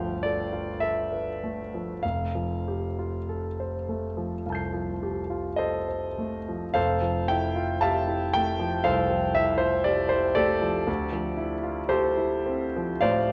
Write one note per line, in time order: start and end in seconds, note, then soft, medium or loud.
0.00 0.13 D2 soft
0.00 1.74 F3 soft
0.00 1.43 A3 soft
0.00 0.53 F4 soft
0.00 0.26 A4 soft
0.00 1.12 B4 soft
0.00 0.23 F5 medium
0.00 2.05 G5 medium
0.23 0.69 A4 soft
0.23 0.80 D5 medium
0.53 0.98 F4 soft
0.80 1.29 A4 soft
0.80 2.03 E5 medium
1.12 1.60 B4 soft
1.43 1.91 A3 soft
1.74 2.04 F3 soft
2.03 4.41 F1 soft
2.03 4.45 F5 medium
2.35 2.85 F3 soft
2.68 3.16 G4 soft
2.99 3.46 F4 soft
3.29 3.76 A4 soft
3.60 4.05 C5 soft
3.89 4.34 A3 soft
4.17 4.62 F3 soft
4.46 4.91 C2 soft
4.46 6.72 F5 soft
4.46 6.76 A5 soft
4.52 6.77 G6 soft
4.52 6.78 C7 soft
4.73 5.19 F3 soft
5.03 5.48 G4 soft
5.30 5.76 F4 soft
5.56 6.07 A4 soft
5.56 5.87 C5 soft
5.56 6.76 D#5 medium
5.88 6.37 C5 soft
6.18 6.66 A3 soft
6.49 6.77 F3 soft
6.74 8.82 F1 medium
6.74 7.26 A4 medium
6.74 7.26 C5 medium
6.74 7.29 F5 medium
7.02 7.46 F3 soft
7.28 7.72 E4 soft
7.28 7.82 G5 medium
7.56 7.98 F4 soft
7.81 8.25 G4 soft
7.81 8.31 E5 medium
7.81 8.31 F5 medium
7.81 8.34 A5 medium
8.08 8.50 E4 soft
8.34 8.77 A3 soft
8.34 8.86 G5 medium
8.60 9.01 F3 soft
8.84 9.26 C2 soft
8.84 9.32 A4 medium
8.84 9.32 C5 medium
8.84 9.35 F5 medium
9.10 9.50 F3 soft
9.35 9.76 E4 soft
9.35 9.60 E5 medium
9.57 10.00 F4 soft
9.57 9.84 C5 medium
9.84 10.26 G4 soft
9.84 10.10 D5 medium
10.09 10.52 E4 soft
10.09 10.36 C5 medium
10.35 10.77 A3 soft
10.35 11.86 G4 medium
10.35 11.85 A4 medium
10.35 11.89 D5 medium
10.62 10.88 F3 soft
10.87 12.98 D2 medium
11.13 11.54 F3 soft
11.37 11.79 E4 soft
11.64 12.06 F4 soft
11.89 12.98 G4 medium
11.89 12.98 A4 medium
11.89 13.01 C5 medium
12.17 12.64 E4 soft
12.46 12.92 C4 soft
12.76 13.19 F3 soft
13.01 13.32 A2 soft
13.01 13.32 C5 medium
13.01 13.32 D5 medium
13.01 13.32 F5 medium